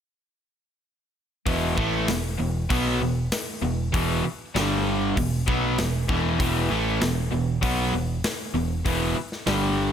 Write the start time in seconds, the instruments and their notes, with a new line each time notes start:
1.46 picked electric bass E1, overdriven electric guitar E2 B2 E3, kick, open hi-hat
1.77 picked electric bass A1, overdriven electric guitar A2 E3 A3, kick
2.08 picked electric bass E1, overdriven electric guitar E2 B2, snare, open hi-hat
2.39 picked electric bass E1, overdriven electric guitar E2 B2
2.70 picked electric bass B1, overdriven electric guitar B2 F#3 B3, kick, open hi-hat
3.01 picked electric bass E1, overdriven electric guitar E2 B2
3.32 snare, open hi-hat
3.62 picked electric bass E1, overdriven electric guitar E2 B2
3.94 picked electric bass E1, overdriven electric guitar E2 B2 E3, kick, open hi-hat
4.25 muted overdriven electric guitar stroke
4.55 picked electric bass G1, overdriven electric guitar G2 D3 G3, snare, open hi-hat
5.16 picked electric bass E1, overdriven electric guitar E2 B2, kick, open hi-hat
5.47 picked electric bass B1, overdriven electric guitar B2 F#3 B3, kick
5.78 picked electric bass E1, overdriven electric guitar E2 B2, snare, open hi-hat
6.09 picked electric bass E1, overdriven electric guitar E2 B2 E3, kick
6.40 picked electric bass E1, overdriven electric guitar E2 B2 E3, kick, open hi-hat
6.70 picked electric bass A1, overdriven electric guitar A2 E3 A3
7.01 picked electric bass E1, overdriven electric guitar E2 B2, snare, open hi-hat
7.31 picked electric bass E1, overdriven electric guitar E2 B2
7.62 picked electric bass B1, overdriven electric guitar B2 F#3 B3, kick, open hi-hat
7.92 picked electric bass E1, overdriven electric guitar E2 B2
8.24 snare, open hi-hat
8.54 picked electric bass E1, overdriven electric guitar E2 B2
8.85 picked electric bass E1, overdriven electric guitar E2 B2 E3, kick, open hi-hat
9.16 muted overdriven electric guitar stroke
9.32 snare
9.47 picked electric bass G1, overdriven electric guitar G2 D3 G3, snare, open hi-hat